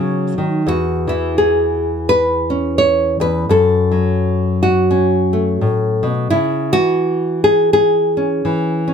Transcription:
nylon-string guitar
Already playing: C#3 F#3 D#4
0.38 D#3
0.66 E2 F#4
1.07 E3 E4
1.38 G#4
2.09 B4
2.50 C#4
2.78 C#5
3.20 E2 B4
3.49 F#2 A4
3.91 F#3
4.63 F#4
4.91 C#4
5.33 A3
5.61 A2
6.03 B2
6.30 C#3 E4
6.73 E3 F#4
7.44 G#4
7.73 G#4
8.17 C#4
8.45 E3
8.88 C#4

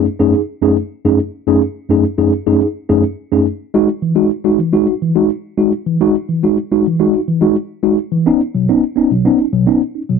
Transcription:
tine electric piano
0.20 F#2 A3 C#4 D#4 G#4
0.34 D#4 G#4
0.61 F#2 A3 C#4 D#4 G#4
1.05 F#2 A3 C#4 D#4 G#4
1.47 F#2 A3 C#4 D#4 G#4
1.90 F#2 A3 C#4 D#4 G#4
2.18 F#2 A3 C#4 D#4 G#4
2.47 F#2 A3 C#4 D#4 G#4
2.61 D#4 G#4
2.89 F#2 A3 C#4 D#4 G#4
3.32 F#2 A3 C#4 D#4 G#4
3.74 G#3 D#4 F#4
4.02 E3
4.15 G#3 D#4 F#4
4.44 G#3 D#4 F#4
4.59 E3
4.73 G#3 D#4 F#4
4.87 D#4 F#4
5.02 E3
5.15 G#3 D#4 F#4
5.57 G#3 D#4 F#4
5.87 E3
6.01 G#3 D#4 F#4
6.29 E3
6.43 G#3 D#4 F#4
6.72 G#3 D#4 F#4
6.87 E3
6.99 G#3 D#4 F#4
7.14 D#4 F#4
7.28 E3
7.41 G#3 D#4 F#4
7.83 G#3 D#4 F#4
8.12 E3
8.26 B3 C#4 D#4
8.55 B2 F#3
8.69 B3 C#4 D#4
8.96 B3 C#4 D#4
9.11 B2 F#3
9.25 B3 C#4 D#4
9.39 C#4 D#4
9.53 B2 F#3
9.67 B3 C#4 D#4
9.95 C#4 D#4
10.09 B2 F#3

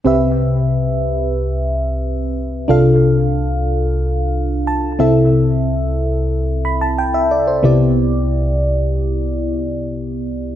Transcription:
fm electric piano
0.05 C2 C3 C4 G4 B4 E5
2.68 C2 C3 D4 F4 A4 F5
4.67 A5
4.99 C2 C3 C4 E4 A4 E5
6.65 B5
6.81 A5
6.98 G5
7.14 E5
7.31 D5
7.47 C5
7.63 C2 C3 B3 E4 G4 D5

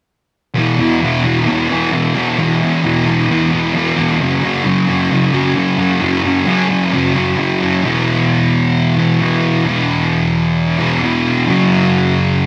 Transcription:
distorted electric guitar
0.56 E2 B2 E3
0.78 B2 E3
1.01 E2 B2 E3
1.24 B2 E3
1.47 E2 B2 E3
1.69 B2 E3
1.92 E2 B2 E3
2.15 B2 E3
2.38 E2 B2 E3
2.60 B2 E3
2.83 E2 B2 E3
3.06 B2 E3
3.28 E2 B2 E3
3.50 B2 E3
3.73 E2 B2 E3
3.96 B2 E3
4.19 F#2 C#3 F#3
4.41 C#3 F#3
4.64 F#2 C#3 F#3
4.88 C#3 F#3
5.10 F#2 C#3 F#3
5.33 C#3 F#3
5.55 F#2 C#3 F#3
5.78 C#3 F#3
6.01 F#2 C#3 F#3
6.23 C#3 F#3
6.47 F#2 C#3 F#3
6.69 C#3 F#3
6.92 F#2 C#3 F#3
7.15 C#3 F#3
7.37 F#2 C#3 F#3
7.60 C#3 F#3
7.83 E2 B2 E3
8.96 E2 B2 E3
9.19 E2 B2 E3
9.65 E2 B2 E3
10.78 E2 B2 E3
11.01 E2 B2 E3
11.46 F#2 C#3 F#3

